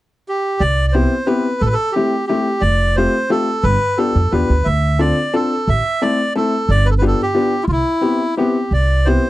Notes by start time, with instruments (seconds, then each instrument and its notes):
0.28 melodica G4
0.60 upright bass C2, melodica D5
0.88 melodica D5
0.92 upright piano B3 C4 E4 G4, melodica C5
1.26 upright piano B3 C4 E4 G4, melodica B4
1.61 upright bass A1, melodica A4
1.66 melodica B4
1.73 melodica A4
1.92 upright piano C4, melodica G4
1.96 upright piano A3 E4 G4
2.27 upright piano A3 C4 E4 G4, melodica G4
2.61 upright bass F1, melodica D5
2.96 upright piano A3 C4 F4 G4, melodica C5
3.30 upright piano A3 C4 F4 G4, melodica A4
3.63 upright bass G1, melodica B4
3.97 upright piano B3 D4 F4 G4, melodica A4
4.15 upright bass F2
4.31 upright bass E2, upright piano B3 D4 F4 G4, melodica B4
4.50 upright bass D2
4.65 upright bass D2, melodica E5
4.99 upright piano C4 D4 F4 A4, melodica D5
5.34 upright piano C4 D4 F4 A4, melodica A4
5.68 upright bass A1, melodica E5
6.02 upright piano A3 C4 E4 A4, melodica D5
6.36 upright piano A3 C4 E4 A4, melodica A4
6.69 upright bass G1, melodica D5
6.85 melodica B4
6.90 melodica A4
6.98 upright piano B3 D4 F4 G4, melodica B4
7.07 melodica A4
7.22 melodica G4
7.34 upright piano B3 D4 F4 G4
7.63 melodica E4 F4
7.68 upright bass C2, melodica F4
7.72 melodica E4
8.01 upright piano B3 C4 E4 G4
8.37 upright piano B3 C4 E4 G4, melodica G4
8.71 upright bass C2, melodica D5
9.05 upright piano B3 C4 E4 G4, melodica C5